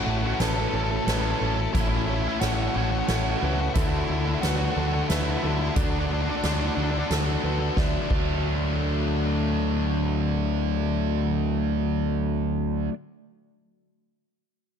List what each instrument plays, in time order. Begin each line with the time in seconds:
Already playing: overdriven electric guitar A2 E3, distorted electric guitar A3 C#4 E4, ambient pad F#4 C#5 A5, felt piano A4
0.04 fingered electric bass A1, overdriven electric guitar A3 C#4, lead electric guitar F#4
0.08 overdriven electric guitar E4 A4, lead electric guitar F#4
0.19 lead electric guitar F#4, overdriven electric guitar A4
0.24 overdriven electric guitar A3 C#4 E4, lead electric guitar F#4
0.34 lead electric guitar F#4
0.39 fingered electric bass A1, overdriven electric guitar A2 E3 A3 C#4 E4 A4, lead electric guitar A4, felt piano B4, snare, closed hi-hat
0.48 lead electric guitar A4
0.54 overdriven electric guitar E4 A4, lead electric guitar A4
0.59 overdriven electric guitar A3 C#4, lead electric guitar A4
0.69 distorted electric guitar E3, overdriven electric guitar A3, lead electric guitar A4
0.73 fingered electric bass A1, overdriven electric guitar C#4 E4 A4, felt piano A4, lead electric guitar A4
0.84 lead electric guitar A4
0.90 overdriven electric guitar A3 C#4 E4 A4, lead electric guitar A4, muted distorted electric guitar stroke
0.97 lead electric guitar A4
1.06 fingered electric bass A1, distorted electric guitar E3 A3 C#4 E4, lead electric guitar A4, felt piano B4, snare, closed hi-hat
1.13 lead electric guitar A4
1.21 distorted electric guitar C#4 E4, lead electric guitar A4
1.26 distorted electric guitar A3
1.31 lead electric guitar A4
1.39 fingered electric bass A1, distorted electric guitar E3, overdriven electric guitar A3 C#4 E4, lead electric guitar A4, felt piano A4
1.43 overdriven electric guitar A4, lead electric guitar A4
1.54 overdriven electric guitar E4 A4, lead electric guitar A4, muted distorted electric guitar stroke
1.60 overdriven electric guitar A3 C#4, lead electric guitar A4
1.73 fingered electric bass A1, overdriven electric guitar A2 E3 A3 C#4 E4 A4, lead electric guitar E4, kick, closed hi-hat
1.81 lead electric guitar E4
1.89 lead electric guitar E4
1.97 lead electric guitar E4
2.06 overdriven electric guitar A3 C#4 E4 A4, lead electric guitar E4, felt piano C#5
2.14 lead electric guitar E4
2.22 lead electric guitar E4, overdriven electric guitar E4 A4
2.26 overdriven electric guitar A3 C#4, lead electric guitar E4
2.40 fingered electric bass A1, overdriven electric guitar A2 E3 A3 C#4 E4 A4, lead electric guitar F#4, felt piano C#5, snare, closed hi-hat
2.48 lead electric guitar F#4
2.55 overdriven electric guitar E4 A4, lead electric guitar F#4
2.60 overdriven electric guitar A3 C#4, lead electric guitar F#4
2.69 lead electric guitar F#4
2.74 fingered electric bass A1, distorted electric guitar E3, overdriven electric guitar A3 C#4 E4 A4, lead electric guitar F#4
2.84 lead electric guitar F#4
2.91 overdriven electric guitar C#4 E4 A4, lead electric guitar F#4, muted distorted electric guitar stroke
2.95 overdriven electric guitar A3
2.99 lead electric guitar F#4
3.07 fingered electric bass A1, distorted electric guitar E3 A3 C#4 E4, lead electric guitar F#4, felt piano A4, snare, closed hi-hat
3.15 lead electric guitar F#4
3.23 distorted electric guitar C#4 E4, lead electric guitar F#4
3.27 distorted electric guitar A3, lead electric guitar F#4
3.38 distorted electric guitar E3, overdriven electric guitar A3, lead electric guitar F#4
3.42 fingered electric bass C#2, overdriven electric guitar C#4 E4 A4, lead electric guitar F#4, felt piano B4
3.53 lead electric guitar F#4
3.58 overdriven electric guitar A3 C#4 E4 A4, lead electric guitar F#4, muted distorted electric guitar stroke
3.69 lead electric guitar F#4
3.74 fingered electric bass D2, overdriven electric guitar D3 A3 D4 F#4 A4, lead electric guitar E4, felt piano A4, ambient pad D5, kick, closed hi-hat
3.82 lead electric guitar E4
3.89 lead electric guitar E4
3.98 lead electric guitar E4
4.05 overdriven electric guitar A3, lead electric guitar E4
4.10 fingered electric bass D2, overdriven electric guitar D4 F#4 A4, lead electric guitar E4
4.20 lead electric guitar E4
4.26 distorted electric guitar A3, overdriven electric guitar D4 F#4 A4, lead electric guitar E4
4.35 lead electric guitar E4
4.41 fingered electric bass D2, overdriven electric guitar D3 A3 D4 F#4 A4, lead electric guitar F#4, felt piano B4, snare, closed hi-hat
4.49 lead electric guitar F#4
4.57 lead electric guitar F#4, overdriven electric guitar F#4 A4
4.62 overdriven electric guitar D4, lead electric guitar F#4
4.71 distorted electric guitar D3, lead electric guitar F#4
4.76 fingered electric bass D2, overdriven electric guitar A3 D4 F#4 A4, felt piano A4
4.80 lead electric guitar F#4
4.87 lead electric guitar F#4
4.93 overdriven electric guitar D4 F#4 A4, lead electric guitar F#4, muted distorted electric guitar stroke
5.04 lead electric guitar E4 F#4
5.09 fingered electric bass D2, distorted electric guitar D3 A3 D4 F#4, felt piano B4, snare, closed hi-hat
5.16 lead electric guitar E4
5.23 lead electric guitar E4, distorted electric guitar F#4
5.28 distorted electric guitar A3 D4
5.32 lead electric guitar E4
5.38 lead electric guitar E4
5.42 fingered electric bass D2, distorted electric guitar D3, overdriven electric guitar A3 D4 F#4 A4, felt piano A4
5.49 lead electric guitar E4
5.55 lead electric guitar E4
5.59 overdriven electric guitar D4 F#4 A4, lead electric guitar E4, muted distorted electric guitar stroke
5.70 lead electric guitar E4
5.76 fingered electric bass D2, overdriven electric guitar D3 A3 D4 F#4 A4, lead electric guitar D4, ambient pad B5, kick, closed hi-hat
5.83 lead electric guitar D4
5.91 lead electric guitar D4
6.00 lead electric guitar D4
6.07 overdriven electric guitar A3, lead electric guitar D4, felt piano D5
6.11 overdriven electric guitar D4 F#4 A4, lead electric guitar D4
6.22 lead electric guitar D4, distorted electric guitar F#4
6.26 distorted electric guitar A3 D4, lead electric guitar D4, overdriven electric guitar F#4 A4
6.31 overdriven electric guitar D4
6.36 lead electric guitar D4
6.43 fingered electric bass D2, overdriven electric guitar D3 A3 D4 F#4 A4, lead electric guitar D4, felt piano D5, snare, closed hi-hat
6.53 lead electric guitar D4
6.60 lead electric guitar D4, overdriven electric guitar F#4 A4
6.64 overdriven electric guitar D4, lead electric guitar D4
6.75 fingered electric bass D2, distorted electric guitar D3, overdriven electric guitar A3, lead electric guitar D4
6.79 overdriven electric guitar D4 F#4 A4
6.83 lead electric guitar D4
6.91 lead electric guitar D4, overdriven electric guitar A4, muted distorted electric guitar stroke
6.96 overdriven electric guitar D4 F#4, lead electric guitar D4
7.08 fingered electric bass D2, distorted electric guitar D3 A3 D4 F#4, felt piano A4, snare, closed hi-hat
7.25 distorted electric guitar A3 D4 F#4
7.42 fingered electric bass D2, distorted electric guitar D3, overdriven electric guitar A3 D4 F#4, felt piano B4
7.46 overdriven electric guitar A4
7.59 overdriven electric guitar D4 F#4 A4, muted distorted electric guitar stroke
7.76 fingered electric bass D2, overdriven electric guitar D3 F#3 A3 D4, ambient pad D3 A3 F#4, felt piano D5, kick, snare
8.10 fingered electric bass D2, overdriven electric guitar D3 F#3 A3 D4, felt piano D5, kick, crash